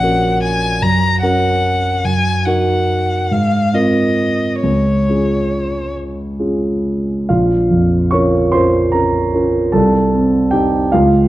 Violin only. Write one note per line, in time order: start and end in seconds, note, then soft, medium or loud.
0.00 0.41 F#5 medium
0.43 0.83 G#5 medium
0.82 1.22 A#5 medium
1.23 2.07 F#5 medium
2.05 2.47 G#5 medium
2.46 3.34 F#5 soft
3.32 3.76 F5 soft
3.74 4.62 D#5 soft
4.63 5.93 C#5 soft